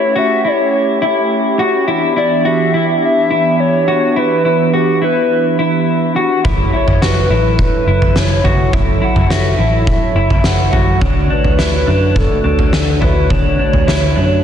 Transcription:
Already playing: analog synth pad A3 C#4 G4, clean electric guitar E4, soft synth lead C#5
0.16 clean electric guitar F#4, soft synth lead E5
0.45 clean electric guitar E4, soft synth lead C#5
1.02 clean electric guitar E4
1.59 clean electric guitar F#4
1.88 analog synth pad E3 B3 D4, clean electric guitar E4
2.16 clean electric guitar E4, soft synth lead D5
2.45 clean electric guitar F#4, soft synth lead E5
2.74 clean electric guitar E4
3.04 soft synth lead E5
3.31 clean electric guitar E4
3.60 soft synth lead C#5
3.88 clean electric guitar F#4
4.16 clean electric guitar E4, soft synth lead B4
4.45 clean electric guitar E4
4.74 clean electric guitar F#4, soft synth lead G4
5.02 clean electric guitar E4, soft synth lead B4
5.59 clean electric guitar E4
6.16 clean electric guitar F#4
6.44 picked electric bass F#1, analog synth pad F#3 E4 A4 C#5, clean electric guitar E4, kick, floor tom
6.73 clean electric guitar E4, soft synth lead C#5
6.87 picked electric bass F#1, floor tom
7.02 picked electric bass F#1, clean electric guitar F#4, soft synth lead B4, snare
7.30 picked electric bass A1, clean electric guitar E4
7.59 soft synth lead B4, kick
7.87 picked electric bass F#1, clean electric guitar E4
8.02 floor tom
8.16 picked electric bass F#1, soft synth lead C#5, snare
8.44 picked electric bass F#1, clean electric guitar F#4, floor tom
8.73 picked electric bass F#1, clean electric guitar E4, kick, floor tom
9.02 clean electric guitar E4, soft synth lead F#5
9.16 picked electric bass F#1, floor tom
9.30 picked electric bass F#1, clean electric guitar F#4, soft synth lead E5, snare
9.58 picked electric bass A1, clean electric guitar E4
9.87 soft synth lead E5, kick
10.15 picked electric bass F#1, clean electric guitar E4
10.30 floor tom
10.44 picked electric bass F#1, soft synth lead F#5, snare
10.73 picked electric bass F#1, clean electric guitar F#4, floor tom
11.01 picked electric bass D2, analog synth pad D3 A3 F#4, clean electric guitar D4, kick, floor tom
11.30 clean electric guitar D4, soft synth lead B4
11.44 picked electric bass D2, floor tom
11.59 picked electric bass D2, clean electric guitar E4, snare
11.87 picked electric bass F#2, clean electric guitar D4
12.16 soft synth lead A4, kick, floor tom
12.44 picked electric bass D2, clean electric guitar D4, soft synth lead A4
12.59 floor tom
12.73 picked electric bass D2, snare
13.01 picked electric bass D2, clean electric guitar E4, soft synth lead B4, floor tom
13.30 picked electric bass D2, clean electric guitar D4, soft synth lead C#5, kick, floor tom
13.59 clean electric guitar D4
13.73 picked electric bass D2, floor tom
13.87 picked electric bass D2, clean electric guitar E4, snare
14.16 picked electric bass F#2, clean electric guitar D4

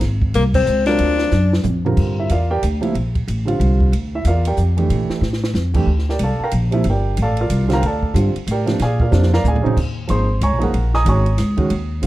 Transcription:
0.01 upright bass G#1, snare, ride
0.22 kick
0.34 upright bass C2, tenor saxophone A#3, hi-hat pedal, ride
0.54 tenor saxophone C4, kick, crash
0.66 upright bass C#2, hi-hat pedal
0.86 grand piano F#3 C4 D4 F4 A#4, tenor saxophone D4, snare, ride
0.98 upright bass D2, ride
1.18 snare
1.31 upright bass F#2, snare, hi-hat pedal
1.53 snare
1.63 upright bass F2, floor tom, hi-hat pedal
1.85 grand piano D3 G3 C4 F4 A#4, floor tom
1.97 upright bass G2, kick, crash
2.20 grand piano E4 E5
2.29 upright bass E2, grand piano F4 A#4 D5 F5, hi-hat pedal, ride
2.51 grand piano G4 A#4 D5 G5
2.63 upright bass D2, hi-hat pedal, ride
2.81 grand piano C3 F3 A#3 E4, ride
2.94 upright bass A#1, ride
3.15 kick, ride
3.28 upright bass A1, hi-hat pedal, ride
3.45 grand piano D3 G3 C4 F4, ride
3.60 upright bass C2, ride
3.80 kick
3.92 upright bass D2, ride
4.15 grand piano E4 E5
4.25 upright bass E2, grand piano F4 A#4 D5 F5, hi-hat pedal, ride
4.45 grand piano G4 A#4 D5 G5, ride
4.57 upright bass F2, hi-hat pedal
4.77 grand piano E3 A3 D4 G4, ride
4.90 upright bass A#2, ride
5.09 muted upright bass stroke, snare
5.21 upright bass A2, snare
5.33 snare
5.44 snare
5.54 upright bass F2, snare, hi-hat pedal
5.74 grand piano E3 A3 D4 G4, kick, crash
5.87 upright bass D2
5.99 snare
6.09 grand piano G4 A#4 D5 G5, snare
6.19 upright bass C2, hi-hat pedal, ride
6.24 grand piano A4 D5 F5 A5
6.39 muted upright bass stroke
6.43 grand piano A#4 F5 G5 A#5
6.51 upright bass A#1, hi-hat pedal, ride
6.71 grand piano C3 F3 A#3 E4, ride
6.84 upright bass G1, ride
6.90 grand piano G4 A#4 D5 G5
7.17 upright bass A1, hi-hat pedal, ride
7.22 grand piano A4 D5 F5 A5
7.37 grand piano D5, ride
7.41 grand piano F4 A#4 F5
7.50 upright bass C2, hi-hat pedal, ride
7.68 grand piano D3 G3 C4 F4, snare, ride
7.73 grand piano A#4 F5 G5 A#5
7.82 upright bass D2, grand piano A4 A5, ride
7.86 grand piano D5 F5
8.03 kick
8.14 upright bass G2, grand piano D3 G3 C4 F4, hi-hat pedal, ride
8.35 muted upright bass stroke, ride
8.47 upright bass A2, hi-hat pedal, ride
8.51 grand piano G4 A#4 D5 G5
8.66 grand piano C3 F3 A#3 D4, snare, ride
8.79 upright bass A#2, grand piano D5 F5 G#5, snare, ride
8.84 grand piano G#4
9.00 grand piano F4 A#4 D5 F5, kick
9.11 upright bass F2, grand piano C3 F3 A#3 D4, snare, hi-hat pedal
9.23 snare
9.34 grand piano A#4 D5 F5 A#5, snare
9.44 upright bass D2, floor tom, hi-hat pedal
9.48 grand piano G#4 D5 F5 G#5
9.56 floor tom
9.62 grand piano C#3 F#3 C4 D#4, muted upright bass stroke
9.66 floor tom
9.77 upright bass D#2, kick, crash
10.08 upright bass G#1, grand piano F3 A#3 D#4 G#4 C5 C6, hi-hat pedal, ride
10.41 upright bass C#2, grand piano C#5 G#5 A#5 C#6, hi-hat pedal, ride
10.52 upright bass A#1
10.58 grand piano F3 A#3 D#4 G#4, ride
10.63 upright bass F#1, grand piano A#4 F5 F#5 A#5
10.74 upright bass A#1, ride
10.94 grand piano D#5 G#5 A#5 D#6, snare
11.05 upright bass G#1, grand piano D#3 G#3 C#4 F#4 A#5 C#6, hi-hat pedal, ride
11.09 grand piano C#5 G#5
11.26 ride
11.38 upright bass C#2, snare, hi-hat pedal, ride
11.57 grand piano D#3 G#3 C#4 F#4, kick, ride
11.70 upright bass D#2, ride
12.02 upright bass A#2, grand piano C#3 F#3 C4 F4, hi-hat pedal, ride

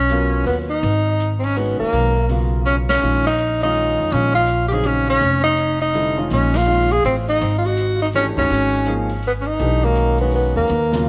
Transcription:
Already playing: upright bass B1, tenor saxophone C#4
0.09 grand piano F#3 B3 F4 A#4, closed hi-hat
0.46 upright bass D#2, tenor saxophone B3, open hi-hat
0.70 tenor saxophone D#4
0.83 upright bass G#1, open hi-hat
1.20 closed hi-hat
1.39 tenor saxophone C4
1.44 tenor saxophone C#4, open hi-hat
1.56 grand piano D#3 G#3 C#4 F#4, tenor saxophone B3, open hi-hat
1.80 tenor saxophone A#3, muted upright bass stroke
1.93 upright bass B1, open hi-hat
2.29 grand piano C#3 F#3 B3 F4, open hi-hat
2.65 tenor saxophone C#4, closed hi-hat
2.89 tenor saxophone C#4, snare, ride
3.01 upright bass A#1, grand piano D#3 G#3 C#4 F4
3.26 tenor saxophone D#4, snare
3.39 closed hi-hat
3.61 grand piano D#3 G#3 C#4 F4, tenor saxophone D#4, open hi-hat
3.74 open hi-hat
3.99 upright bass F2
4.10 upright bass A#1, grand piano D#3 G#3 C#4, tenor saxophone C#4, open hi-hat
4.15 grand piano F4
4.35 tenor saxophone F4
4.47 closed hi-hat
4.68 grand piano C#3 F#3, tenor saxophone G4, open hi-hat
4.72 grand piano C4 D#4, tenor saxophone G#4
4.84 tenor saxophone C#4, closed hi-hat
5.08 tenor saxophone C#4, open hi-hat
5.21 upright bass F1, open hi-hat
5.43 tenor saxophone D#4
5.57 closed hi-hat
5.81 tenor saxophone D#4, open hi-hat
5.94 grand piano D3 G3 C4 E4, open hi-hat
6.16 grand piano D#3 G#3 C#4 F4
6.30 upright bass A#1, tenor saxophone C#4, open hi-hat
6.54 tenor saxophone F4, snare, ride
6.66 grand piano D#3 G#3 C#4 F4
6.92 tenor saxophone G#4, open hi-hat
7.04 upright bass A1, tenor saxophone C4, closed hi-hat
7.28 tenor saxophone D#4, open hi-hat
7.41 upright bass G#1, open hi-hat
7.58 tenor saxophone F4
7.65 tenor saxophone F#4
7.77 closed hi-hat
8.00 tenor saxophone D#4, open hi-hat
8.13 grand piano E3 A3 D4 G4, tenor saxophone C#4, open hi-hat
8.36 upright bass F#1, grand piano D#3 G#3 C#4 F#4, tenor saxophone C#4, kick
8.50 upright bass G#1, grand piano D#3 G#3 C#4 F#4, open hi-hat
8.86 grand piano F3 A#3 D#4 G#4, closed hi-hat
9.09 open hi-hat
9.23 open hi-hat
9.27 tenor saxophone B3
9.41 tenor saxophone C#4
9.47 tenor saxophone D#4
9.59 upright bass B1, grand piano E3 A3 D4 G4, open hi-hat
9.83 grand piano D#3 G#3 C#4 F#4, tenor saxophone A#3
9.96 closed hi-hat
10.18 grand piano D#3 G#3 C#4 F#4, tenor saxophone B3, open hi-hat
10.31 tenor saxophone B3, open hi-hat
10.56 upright bass D#2, tenor saxophone A#3
10.68 upright bass D#2, open hi-hat
10.92 grand piano B2 C#3 F#3 F4, snare

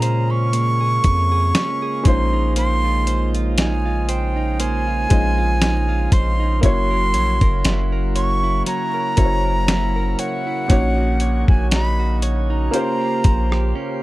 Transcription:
Already playing: 808-style bass A#2, pipe organ C#3 G#3 A#3 F4, grand piano G#3 C4 C#4 F4 A#4, clean electric guitar A#3 C#4 G#4, flute A#5
0.02 clean electric guitar C5, closed hi-hat
0.30 clean electric guitar C#4, flute C#6
0.53 clean electric guitar A#3, closed hi-hat
0.81 clean electric guitar G#4
1.04 808-style bass F2, kick, closed hi-hat
1.32 clean electric guitar G#4
1.55 clean electric guitar C#4, snare, closed hi-hat
1.82 clean electric guitar G#4
2.04 808-style bass A#1, grand piano G#3 C#4 D#4 F4, clean electric guitar A#3, pipe organ D#4 F4, flute C6, kick, closed hi-hat
2.08 grand piano C5
2.33 clean electric guitar D#4
2.56 clean electric guitar A#3 C5, flute C6, closed hi-hat
2.84 clean electric guitar F4
3.07 clean electric guitar C5, closed hi-hat
3.35 clean electric guitar F4, closed hi-hat
3.58 clean electric guitar D#4, flute G#5, snare, closed hi-hat
3.86 clean electric guitar F4
4.09 clean electric guitar C5, flute G5, closed hi-hat
4.36 clean electric guitar D#4
4.60 clean electric guitar A#3 C5, flute G#5, closed hi-hat
4.87 clean electric guitar F4
5.10 808-style bass A#1, grand piano G#3 C#4 D#4 F4 D#5, clean electric guitar C5, kick, closed hi-hat
5.38 clean electric guitar F4
5.62 clean electric guitar D#4, snare, closed hi-hat
5.89 clean electric guitar F4
6.12 808-style bass A#1, clean electric guitar C5, flute C6, kick, closed hi-hat
6.40 clean electric guitar D#4
6.61 808-style bass F#1, pipe organ C#3 F#3 A#3 E4 F#4, clean electric guitar F#3 C#5, grand piano A#3 C#4 E4 F#4, flute C6, kick, closed hi-hat
6.66 grand piano C#5
6.91 clean electric guitar A#4
7.14 808-style bass A#1, clean electric guitar C#5, closed hi-hat
7.41 808-style bass F#1, clean electric guitar A#4, kick, closed hi-hat
7.65 808-style bass F#1, clean electric guitar E4, snare, closed hi-hat
7.92 clean electric guitar A#4
8.16 clean electric guitar C#5, flute C#6, closed hi-hat
8.43 clean electric guitar E4
8.66 clean electric guitar F#3 C#5, flute A#5, closed hi-hat
8.94 clean electric guitar A#4
9.16 808-style bass F#1, grand piano A#3 C#4 E4 F#4 C5, clean electric guitar C#5, kick, closed hi-hat
9.25 grand piano C#5
9.45 clean electric guitar A#4
9.68 clean electric guitar E4, snare, closed hi-hat
9.96 clean electric guitar A#4
10.19 clean electric guitar C#5, flute F#5, closed hi-hat
10.47 clean electric guitar E4
10.68 808-style bass A#1, grand piano A#2 C#4 D#4 F#4, pipe organ A#3 C#4 D#4 F#4, clean electric guitar A#3 C#5, kick, closed hi-hat
10.72 grand piano C#5
10.98 clean electric guitar F#4
11.20 clean electric guitar C#5, closed hi-hat
11.48 808-style bass A#1, clean electric guitar F#4, flute G#5, kick
11.71 clean electric guitar D#4, flute B5, snare, closed hi-hat
11.99 clean electric guitar F#4
12.22 clean electric guitar C#5, closed hi-hat
12.50 clean electric guitar D#4, flute A#5
12.71 grand piano A#3 C#4 F4 G4, clean electric guitar A#3 C5, pipe organ F4 G4 C5, closed hi-hat
12.76 grand piano C5
13.01 clean electric guitar G4
13.24 808-style bass A#1, clean electric guitar C5, kick, closed hi-hat
13.52 clean electric guitar G4, cross-stick
13.75 clean electric guitar C#4

